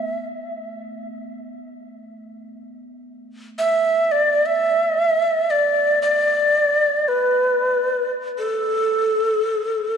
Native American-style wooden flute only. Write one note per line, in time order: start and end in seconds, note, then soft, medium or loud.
0.00 0.21 E5 medium
3.59 4.13 E5 medium
4.12 4.47 D5 medium
4.46 5.52 E5 medium
5.50 6.01 D5 medium
6.02 7.10 D5 medium
7.08 8.11 B4 medium
8.38 9.97 A4 medium